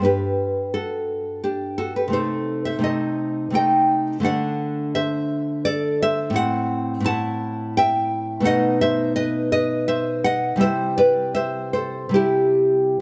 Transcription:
\new Staff \with { instrumentName = "Nylon-string guitar" } { \time 3/4 \key d \mixolydian \tempo 4 = 85 << { <g' b'>4 <fis' a'>4 <d' g'>8 <fis' a'>16 <g' b'>16 | <a' c''>8. <c'' e''>16 <c'' ees''>4 <ees'' g''>4 | <d'' fis''>4 <c'' e''>4 <a' d''>8 <c'' e''>8 | \key c \lydian <c'' fis''>4 <fis'' a''>4 <e'' g''>4 |
<dis'' fis''>8 <c'' e''>8 <b' dis''>8 <b' dis''>8 <c'' e''>8 <dis'' fis''>8 | <c'' e''>8 <b' d''>8 <c'' e''>8 <a' c''>8 <e' g'>4 | } \\ { <g, b d'>2. | <c a ees'>4 <c a ees'>4 <c a ees'>4 | <d a d'>2. | <a, c' e'>4 <a, c' e'>2 |
<b, a dis'>2. | <c g e'>2 <c g>4 | } >> }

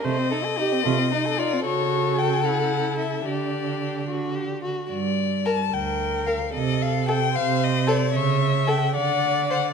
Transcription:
<<
  \new Staff \with { instrumentName = "Violin" } { \time 6/8 \key g \minor \tempo 4. = 74 ees''2~ ees''8 d''8 | cis''4 g''8 fis''4 e''8 | d''4. r4. | d''4 a''8 g''4 f''8 |
ees''8 f''8 g''8 f''8 ees''8 d''8 | cis''4 g''8 fis''4 fis''8 | }
  \new Staff \with { instrumentName = "Viola" } { \time 6/8 \key g \minor c''8 a'8 g'8 f'8 ees'8 f'8 | fis'4. e'4. | d'2~ d'16 r8. | r4. bes'4. |
a'4. c''4. | e''4. d''4. | }
  \new Staff \with { instrumentName = "Violin" } { \time 6/8 \key g \minor a16 c'16 ees'16 a'16 ees'16 c'16 a16 c'16 ees'16 a'16 ees'16 c'16 | a'2. | g'4. fis'8 g'8 fis'8 | r4 bes'16 r4 r16 bes'16 r16 |
r4 a'16 r4 r16 a'16 r16 | r4 a'16 r4 r16 c''16 r16 | }
  \new Staff \with { instrumentName = "Cello" } { \clef bass \time 6/8 \key g \minor c4. c4. | cis2. | d4. d4 r8 | g,4. d,4. |
c4. c4. | cis4. d4. | }
>>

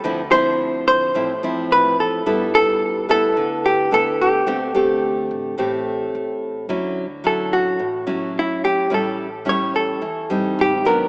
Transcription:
<<
  \new Staff \with { instrumentName = "Hollow-body jazz guitar" } { \time 4/4 \key d \mixolydian \tempo 4 = 108 r8 c''4 c''4. b'8 a'8 | r8 a'4 a'4 g'8 a'8 g'8~ | g'2. r4 | \key d \major r4 a'8 fis'4. e'8 g'8 |
a'4 cis''8 a'4. g'8 bes'8 | }
  \new Staff \with { instrumentName = "Nylon-string guitar" } { \time 4/4 \key d \mixolydian << { <f c' e'>8 <f c' e'>4. <f c' e'>8 <f c' e'>4. | <b e' a'>4. <b e' a'>4. <b e' a'>8 r8 | <a c' g'>8 <a c' g'>4. <a c' g'>2 | \key d \major <fis cis' e'>8 r8 <fis cis' e'>4 r8 <fis cis' e'>4. |
<g cis' e'>8 r8 <g cis' e'>4 r8 <g c' ees'>4 <fis b d'>8 | } \\ { d2 a,2 | g2 d2 | d2 a,2 | d2 a,2 |
a,2 e4 r4 | } >> }
  \new Staff \with { instrumentName = "Upright bass" } { \clef bass \time 4/4 \key d \mixolydian d,4. a,,8 a,,4 a,,4 | g,,4. d,8 d,4 d,4 | d,4. a,,8 a,,4 a,,4 | \key d \major d,4. a,,8 a,,8 a,,8 r4 |
a,,4. e,8 e,8 a,,16 r16 gis,,4 | }
>>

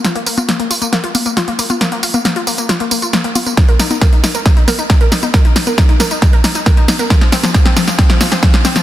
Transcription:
<<
  \new Staff \with { instrumentName = "Synth arpeggio sound" } { \time 4/4 \key ees \dorian \tempo 4 = 136 f'16 bes16 bes16 f'16 bes16 bes16 f'16 bes16 bes16 f'16 bes16 bes16 f'16 bes16 bes16 f'16 | bes16 bes16 f'16 bes16 bes16 f'16 bes16 bes16 f'16 bes16 bes16 f'16 bes16 bes16 f'16 bes16 | ees'16 bes'16 ees'16 ees'16 bes'16 ees'16 ees'16 bes'16 ees'16 ees'16 bes'16 ees'16 ees'16 bes'16 ees'16 ees'16 | bes'16 ees'16 ees'16 bes'16 ees'16 ees'16 bes'16 ees'16 ees'16 bes'16 ees'16 ees'16 bes'16 ees'16 ees'16 bes'16 |
f16 f16 c'16 f16 f16 c'16 f16 f16 c'16 f16 f16 c'16 f16 f16 c'16 f16 | }
  \new DrumStaff \with { instrumentName = "Drums" } \drummode { \time 4/4 <hh sn tamb>16 hh16 <hho tamb>16 <cgho hh tamb>16 <hh sn tamb>16 hh16 <hho tamb>16 <hh tamb>16 <hh sn tamb>16 hh16 <cgho hho tamb>16 <hh tamb>16 <hh sn tamb>16 hh16 <hho tamb>16 <cgho tamb>16 | <hh sn tamb>16 hh16 <hho tamb>16 <cgho tamb>16 <hh sn tamb>16 hh16 <hho tamb>16 <hh tamb>16 <hh sn tamb>16 hh16 <hho tamb>16 <hh tamb>16 <hh sn tamb>16 hh16 <cgho hho tamb>16 <cgho tamb>16 | <hh bd sn tamb>16 hh16 <hho sn tamb>16 <cgho hh tamb>16 <hh bd sn tamb>16 hh16 <hho sn tamb>16 <hh tamb>16 <hh bd sn tamb>16 hh16 <cgho hho sn tamb>16 <hh tamb>16 <hh bd sn tamb>16 hh16 <hho sn tamb>16 <cgho hh tamb>16 | <hh bd sn tamb>16 hh16 <hho sn tamb>16 <cgho tamb>16 <hh bd sn tamb>16 hh16 <hho sn tamb>16 <hh tamb>16 <hh bd sn tamb>16 hh16 <hho sn tamb>16 <hh tamb>16 <hh bd sn tamb>16 hh16 <cgho hho sn tamb>16 <cgho hh tamb>16 |
<hh bd sn tamb>16 <hh sn>16 <hho sn tamb>16 <cgho sn tamb>16 <hh bd sn tamb>16 <hh sn>16 <hho sn tamb>16 <sn tamb>16 <hh bd sn>16 <hh sn>16 <cgho hho sn tamb>16 <sn tamb>16 <hh bd sn tamb>16 <hh sn>16 <hho sn tamb>16 <cgho hh sn tamb>16 | }
>>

